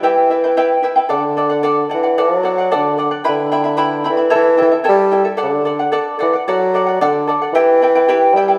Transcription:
<<
  \new Staff \with { instrumentName = "Charango" } { \time 2/4 \key d \mixolydian \tempo 4 = 112 <e' g' b' e'' g''>8 <e' b' e'' g''>16 <e' b' g''>16 <e' g' b' e'' g''>8 <e' b' e'' g''>16 <e' b' g''>16 | <a' d'' fis''>8 <a' d'' fis''>16 <d'' fis''>16 <a' d'' fis''>8 <a' d'' fis''>16 <d'' fis''>16 | <a' d'' fis''>8 <a' d'' fis''>16 <d'' fis''>16 <a' d'' fis''>8 <a' d'' fis''>16 <d'' fis''>16 | <e' b' e'' g'' b''>8 <e' e'' g'' b''>16 <e' e'' b''>16 <e' b' e'' g'' b''>8 <e' e'' g'' b''>16 <e' e'' b''>16 |
<e' a' cis'' e'' g''>8 <e' a' e'' g''>16 <e' a' e''>16 <e' a' cis'' e'' g''>8 <e' a' e'' g''>16 <e' a' e''>16 | <a' d'' fis''>8 <a' d'' fis''>16 <d'' fis''>16 <a' d'' fis''>8 <a' d'' fis''>16 <d'' fis''>16 | <a' d'' fis''>8 <a' d'' fis''>16 <d'' fis''>16 <a' d'' fis''>8 <a' d'' fis''>16 <d'' fis''>16 | <e' g' b' e'' g''>8 <e' b' e'' g''>16 <e' b' g''>16 <e' g' b' e'' g''>8 <e' b' e'' g''>16 <e' b' g''>16 | }
  \new Staff \with { instrumentName = "Bassoon" } { \clef bass \time 2/4 \key d \mixolydian e4. r8 | d4. e8 | fis4 d8. r16 | d4. e8 |
e8 e8 g8. r16 | d4 r8 e8 | fis4 d8. r16 | e4. g8 | }
>>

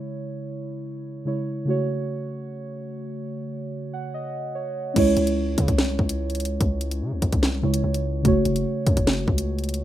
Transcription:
<<
  \new Staff \with { instrumentName = "Synth keys" } { \time 4/4 \key cis \minor \tempo 4 = 146 << { r1 | r1 | r4. fis''8 dis''4 cis''4 | r1 |
r1 | r1 | } \\ { <cis gis e' cis''>2. <cis gis e' cis''>4 | <cis a fis' cis''>1~ | <cis a fis' cis''>1 | <gis cis' e' cis''>1~ |
<gis cis' e' cis''>2~ <gis cis' e' cis''>8 <cis gis e' cis''>4. | <cis a fis' cis''>1 | } >> }
  \new Staff \with { instrumentName = "808-style bass" } { \clef bass \time 4/4 \key cis \minor r1 | r1 | r1 | cis,8 cis,4 cis16 bis,,8. cis,4. |
cis,4 cis16 cis,16 cis,16 bis,,8. cis,8 cis,4 | fis,,8 fis,,8 r8 fis,16 fis,,8. cis,4. | }
  \new DrumStaff \with { instrumentName = "Drums" } \drummode { \time 4/4 r4 r4 r4 r4 | r4 r4 r4 r4 | r4 r4 r4 r4 | <cymc hh bd>8 hh16 hh16 r8 <hh bd>16 <hh bd>16 sn8 bd16 hh16 r16 hh32 hh32 hh32 hh16. |
<hh bd>8 hh16 hh16 r8 <hh bd>16 <hh bd>16 sn8. hh16 r16 hh8. | <hh bd>8 hh16 hh16 r8 <hh bd>16 <hh bd>16 sn8 bd16 hh16 r16 hh32 hh32 hh32 hh16. | }
>>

